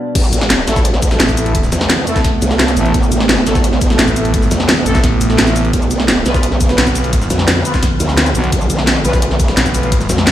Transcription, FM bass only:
1.20 A1
2.77 A1
3.99 A1
4.86 A1
5.38 A1
6.78 B1
8.35 B1
9.57 B1

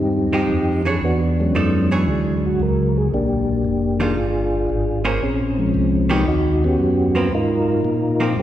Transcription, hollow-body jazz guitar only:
0.33 F3 G#3 D#4 G4
0.85 E3 D4 G#4 C#5
1.55 F3 D#4 A4 D5
1.91 E3 D4 G#4 C#5
4.00 D#3 G3 D4 F4
5.05 A#3 C#4 G#4 C5
6.10 D#3 B3 C#4 G4
7.15 F3 A#3 C4
8.20 F3 A#3 C4

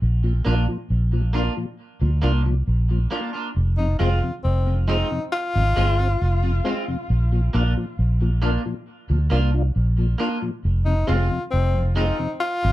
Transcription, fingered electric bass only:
0.02 A#1
0.46 A#1
0.90 A#1
2.02 D2
2.23 C2
2.68 A#1
3.56 F1
4.00 F1
4.45 F1
5.56 G#1
5.77 G1
6.22 F1
7.10 A#1
7.54 A#1
7.99 A#1
9.10 D2
9.32 C2
9.76 A#1
10.65 F1
11.09 F1
11.54 F1
12.64 G#1

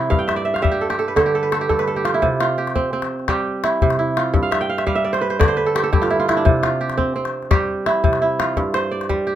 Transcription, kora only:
Already playing: C3 G3 C4 E4 G4
0.10 G2 F5
0.19 G5
0.28 E5
0.36 D5
0.45 E5
0.54 F5
0.62 G3 E5
0.71 G4
0.81 A4
0.90 G4
0.99 A4
1.08 B4
1.16 D3 A4
1.26 G4
1.35 A4
1.43 B4
1.52 A4
1.61 G4
1.69 G2 A4
1.79 B4
1.87 A4
1.96 G4
2.05 F4
2.14 E4
2.22 C3
2.40 F4
2.58 G4
2.75 C4
2.93 C4
3.29 G3 G4
3.64 E4
3.82 C3
3.99 E4
4.17 F4
4.34 G2
4.43 F5
4.51 E5
4.61 G5
4.69 F5
4.78 E5
4.87 G3 F5
4.95 E5
5.04 D5
5.13 C5
5.21 B4
5.30 C5
5.39 D3 D5
5.48 C5
5.57 B4
5.66 A4
5.75 G4
5.83 A4
5.93 G2 G4
6.02 F4
6.10 E4
6.19 F4
6.28 E4
6.37 D4
6.45 C3
6.63 F4
6.81 G4
6.97 C4
7.16 C4
7.51 G3 G4
7.86 E4
8.04 C3
8.22 E4
8.39 F4
8.57 G2
8.74 C5
8.91 D5
9.09 G3
9.27 G4

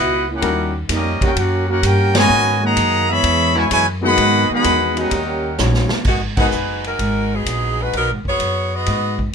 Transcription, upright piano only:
0.42 G3 C#4 D#4 F#4 A#4
4.03 G#3 A#3 B3 D#4 F#4
4.65 G#3 B3 D#4 F#4 A#4
5.60 G3 C#4 D#4 F#4 C#5
6.37 G#3 B3 D#4 F#4 A#4

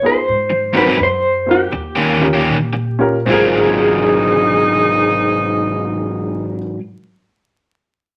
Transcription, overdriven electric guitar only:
0.50 muted overdriven electric guitar stroke
0.73 G#2 F#3 C4 D#4
0.86 G#2 F#3 C4 D#4
0.98 muted overdriven electric guitar stroke
1.72 muted overdriven electric guitar stroke
1.95 D#3 A#3 C#4 G4
2.33 D#3 A#3 C#4 G4
2.73 muted overdriven electric guitar stroke
3.26 G#2 F#3 C4 F4

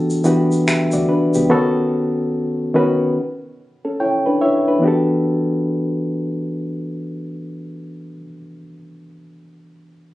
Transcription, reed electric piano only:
Already playing: E3 A3 B3 D4 F#4 G4 A4
0.24 E3 B3 D4 F#4 G4 B4
0.67 G4 E5
0.93 F#4 D5
1.09 D4 B4
1.35 B3 G4
1.49 D#3 B3 C#4 F#4 A4
2.74 D#3 B3 C#4 F#4 B4
3.85 C#4 A4
4.00 E4 C#5 G5
4.26 D4 B4
4.41 E4 C#5 E5
4.68 D4 B4
4.79 E3 B3 D4
4.84 F#4 G4 A4

